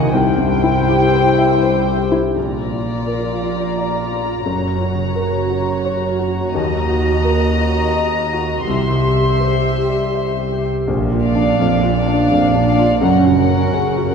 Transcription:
Already playing: felt piano A#2 D#4 F#4 A#4 D#5, harp C3 A#4, flute section G#5
0.00 harp E4 G4
0.08 double bass section C2, harp C5
0.13 cello section C2, felt piano C2, clarinet E4, viola section E4, violin section C5 G5, flute section G5
0.38 felt piano G2
0.64 felt piano E4
0.89 felt piano G4
1.14 felt piano C5
1.38 felt piano E5
1.62 felt piano C5
1.87 felt piano G4
2.12 felt piano E4
2.36 felt piano A#1, double bass section A#1, cello section A#2, harp A#2, viola section F4, violin section D5 A#5
2.62 harp A#4
2.72 felt piano F4
2.84 harp F3
3.07 harp F4, felt piano A#4
3.32 harp D5
3.43 felt piano F4
3.56 harp C5
3.78 felt piano D5, harp D5
4.01 harp A#4
4.12 felt piano F4
4.24 harp F4
4.46 double bass section F#1, felt piano F#2, harp F#2, cello section F#2, viola section F#4, violin section C#5
4.71 harp A#4
4.81 felt piano F#4
4.93 harp C#3
5.15 harp F#4, felt piano A#4
5.39 harp C#5
5.50 felt piano F#4
5.62 harp C6
5.85 felt piano C#5, harp C#5
6.08 harp A#4
6.19 felt piano F#4
6.31 harp F#4
6.53 cello section D#2, double bass section D#2, felt piano D#2, harp D#3, violin section D#5 A#5
6.78 harp A#4
6.89 felt piano F#4
7.02 harp A#3
7.24 harp F#4, felt piano A#4
7.49 harp D#5
7.60 felt piano F#4
7.73 harp C#5
7.95 harp D#5, felt piano D#5
8.20 harp A#4
8.33 felt piano F#4
8.43 harp F#4
8.66 double bass section C2, felt piano C2, cello section C2, harp C3, viola section G4, violin section E5 C6
8.91 harp C5
9.04 felt piano G4
9.16 harp G3
9.40 harp G4, felt piano C5
9.65 harp E5
9.77 felt piano G4
9.89 harp D5
10.14 harp E5, felt piano E5
10.39 harp C5
10.52 felt piano G4
10.65 harp G4
10.87 felt piano A#1, double bass section A#1, cello section A#2, harp A#2
11.12 harp F3, felt piano F4
11.23 viola section D4, violin section D5 F5
11.35 felt piano D4, harp D4
11.59 double bass section A#1, felt piano F2, cello section A#2, harp F4
11.83 felt piano F4, harp D5
11.95 viola section D4, violin section D5 F5
12.07 felt piano D4, harp F4
12.31 double bass section A#1, felt piano F2, cello section A#2, harp D5
12.54 felt piano D4, harp F4
12.66 viola section D4, violin section D5 F5
12.78 harp D4, felt piano F4
13.00 double bass section F#1, cello section F#2, harp F#2, felt piano F#2, viola section C#4, violin section A#4 F#5
13.25 harp C#3, felt piano F#4
13.36 viola section C#4, violin section A#4 F#5
13.49 felt piano C#4, harp C#4
13.71 double bass section F#1, cello section F#2, felt piano C#3, harp F#4
13.96 felt piano F#4, harp A#4
14.07 viola section C#4, violin section A#4 F#5

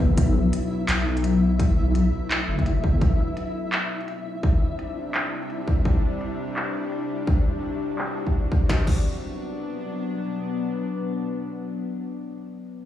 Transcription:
Already playing: wobble bass F#1, synth drone B2 F#3 B3 D4, synth texture E4 E5
0.17 wobble bass B1, kick, closed hi-hat
0.53 closed hi-hat
0.88 wobble bass B1, clap, closed hi-hat
0.96 synth drone A3
1.17 closed hi-hat
1.24 closed hi-hat
1.59 kick, closed hi-hat
1.77 wobble bass B1
1.95 closed hi-hat
2.31 clap, closed hi-hat
2.48 wobble bass F#1
2.59 kick, closed hi-hat
2.66 closed hi-hat
2.84 kick
3.01 synth drone C3, kick, closed hi-hat
3.37 closed hi-hat
3.43 synth drone G3
3.60 synth drone D4
3.72 clap, closed hi-hat
3.79 synth drone E4
4.01 closed hi-hat
4.08 closed hi-hat
4.43 kick, closed hi-hat
4.79 closed hi-hat
5.14 clap, closed hi-hat
5.43 closed hi-hat
5.50 closed hi-hat
5.68 kick
5.85 kick, closed hi-hat
6.21 closed hi-hat
6.56 clap, closed hi-hat
6.85 synth drone F#4, closed hi-hat
6.92 closed hi-hat
7.27 kick, closed hi-hat
7.63 closed hi-hat
7.98 clap, closed hi-hat
8.27 kick, closed hi-hat
8.34 closed hi-hat
8.45 closed hi-hat
8.52 kick
8.69 synth drone B2, kick, snare
8.76 synth drone F#3
8.81 synth drone B3
8.86 synth drone D4, kick, crash

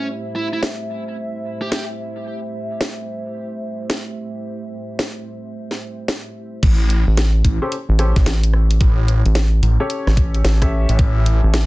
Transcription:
Already playing: analog synth pad A3 G4 C5 E5
0.36 lead electric guitar E4
0.53 lead electric guitar E4
0.63 snare
1.62 lead electric guitar G4
1.72 lead electric guitar G4, snare
2.81 snare
3.90 snare
4.99 snare
5.71 snare
6.08 snare
6.63 detuned saw bass A1, kick, closed hi-hat, crash
6.90 closed hi-hat
7.07 analog synth bass A1
7.17 snare, closed hi-hat
7.45 detuned saw bass A1, kick, closed hi-hat
7.62 grand piano C#4 G4 A4 C5
7.72 closed hi-hat
7.89 analog synth bass A1
7.99 grand piano C#4 G4 A4 C5, cross-stick, closed hi-hat
8.16 detuned saw bass A1, kick, snare, closed hi-hat
8.26 analog synth bass A1, snare, closed hi-hat
8.44 closed hi-hat
8.54 cross-stick
8.71 closed hi-hat
8.81 detuned saw bass A1, kick, closed hi-hat
9.08 closed hi-hat
9.25 analog synth bass A1, closed hi-hat
9.35 snare, closed hi-hat
9.62 detuned saw bass A1, closed hi-hat
9.80 grand piano C#4 G4 A4 C#5
9.90 closed hi-hat
10.07 analog synth bass A1, cross-stick, snare
10.17 kick, closed hi-hat
10.34 closed hi-hat
10.44 analog synth bass A1, snare, closed hi-hat
10.62 grand piano C#4 G4 A4 E5, kick, cross-stick, closed hi-hat
10.89 detuned saw bass A1, closed hi-hat
10.99 detuned saw bass A1, kick, closed hi-hat
11.26 closed hi-hat
11.43 analog synth bass A1
11.54 snare, closed hi-hat

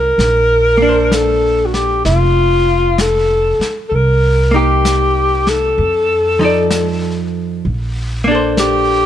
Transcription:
Already playing: upright bass C2, hollow-body jazz guitar F3 C4 D#4, alto saxophone A#4
0.18 upright bass A#1, brush sweep, snare
0.77 hollow-body jazz guitar A#3
0.82 hollow-body jazz guitar D4
0.89 hollow-body jazz guitar C5
1.12 alto saxophone A4, brush sweep, snare, hi-hat pedal
1.66 alto saxophone F#4
1.74 alto saxophone G4, snare
2.05 upright bass F1, alto saxophone F4, brush sweep, snare
2.98 alto saxophone A4, brush sweep, snare, hi-hat pedal
3.59 muted upright bass stroke, snare
3.89 upright bass C2, alto saxophone A4, brush sweep
3.95 alto saxophone A#4
4.51 hollow-body jazz guitar A#3 D#4
4.56 alto saxophone G4, hollow-body jazz guitar G4
4.85 brush sweep, snare, hi-hat pedal
5.47 alto saxophone A4, snare
5.77 upright bass F2, brush sweep
6.39 hollow-body jazz guitar F3 D#4 A4
6.45 hollow-body jazz guitar D5
6.70 brush sweep, snare, hi-hat pedal
7.65 upright bass A#1, brush sweep
8.24 hollow-body jazz guitar A#3 D4
8.31 hollow-body jazz guitar A4 C5
8.57 alto saxophone G4, brush sweep, snare, hi-hat pedal

